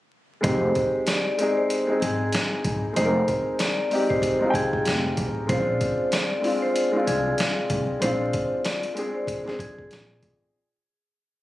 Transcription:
0.41 F1 G#3 C4 D#4 C5, kick, closed hi-hat
0.45 G4
0.75 kick, closed hi-hat
1.07 D5, snare, closed hi-hat
1.38 G#3 C4 D#4, closed hi-hat
1.43 G#4
1.57 C5
1.70 closed hi-hat
1.87 G#3 C4 D#4
1.91 G#4
2.01 G#1 G#4, closed hi-hat
2.33 snare, closed hi-hat
2.64 G#1, kick, closed hi-hat
2.93 F1 G#3 C4 D#4 C5, closed hi-hat
2.98 G#4
3.04 A#4
3.28 kick, closed hi-hat
3.59 D5, snare, closed hi-hat
3.90 G#3 C4 D#4, open hi-hat
3.95 G4
4.10 C5, kick
4.22 kick, closed hi-hat
4.39 G#3 C4 D#4, muted upright bass stroke
4.44 F4
4.50 C2 G5, kick
4.55 G#4, closed hi-hat
4.73 kick
4.85 F1, snare, closed hi-hat
5.17 A1, kick, closed hi-hat
5.47 A#1 G#3 C4 C#4 C5, kick, closed hi-hat
5.51 F4
5.56 D4
5.81 kick, closed hi-hat
6.12 D5, snare, closed hi-hat
6.40 G#3 C4 D4, open hi-hat
6.45 F4
6.62 C5
6.76 closed hi-hat
6.91 G#3 C4 D4
6.96 F4
7.07 C2 G#4, closed hi-hat
7.38 snare, closed hi-hat
7.70 C2, kick, closed hi-hat
8.00 A#1 G#3 C4 D4 C5, closed hi-hat
8.04 F4
8.33 kick, closed hi-hat
8.65 D5, snare, closed hi-hat
8.83 closed hi-hat
8.94 G#3 C4 D4, closed hi-hat
8.99 G#4
9.14 C5
9.27 kick, closed hi-hat
9.44 G#3 C4 D4, muted upright bass stroke
9.48 G#4, snare
9.59 F2 G#4, kick, closed hi-hat
9.79 kick
9.91 A#1, snare, closed hi-hat
10.23 A1, kick, closed hi-hat

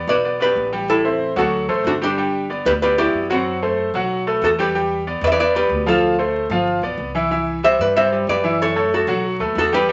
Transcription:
Already playing: B3 B4 D5
0.07 B1 B4 D5
0.24 B3 B4 D5
0.40 B3 G4 B4 D5
0.56 A1
0.72 G3 G4 G5
0.90 E4 A4
1.05 C4 C5 E5
1.36 D2 F#3 F#4 A4 F#5
1.69 A1 A3 A4 C5
1.84 G1 D4 F#4
2.01 G3 D4 G4 G5
2.18 G3 G4 G5
2.50 B3 B4 D5
2.65 D2 G4 B4
2.82 B3 G4 B4 D5
2.98 B3 E4 G4 B4 D5
3.13 F#2
3.30 F#3 C4 F#4 F#5
3.62 A3 A4 C5
3.94 B1 F#3 F#4 F#5
4.27 A3 A4 B4
4.41 E2 F#4 A4
4.58 G3 G4 B4 G5
4.75 G3 G4 G5
5.07 B3 B4 D5
5.21 E2 B4 D5
5.27 E5
5.32 B4 D5
5.39 B3 B4 D5
5.55 B3 G4 B4 D5
5.69 D2
5.86 F3 F4 A4 F5
6.19 A3 A4 C5
6.50 G1 F3 F4 F5
6.82 B1 B3 B4 D5
6.98 C2
7.15 E3 E4 E5
7.31 E3 E4 E5
7.63 G3 G4 B4 C5 E5
7.79 G2 B4 D5
7.96 G3 G4 B4 C5 E5
8.12 G3 G4 B4
8.27 F#2 B4 D5
8.44 E3 E4 E5
8.62 A4 C#5
8.76 A3 A4 C#5
8.94 F#4 A4
9.07 B1 F#3 F#4 F#5
9.39 D#2 A3 A4 B4
9.55 E2 F#4 A4
9.72 G3 G4 B4 G5
9.88 G3 G4 G5

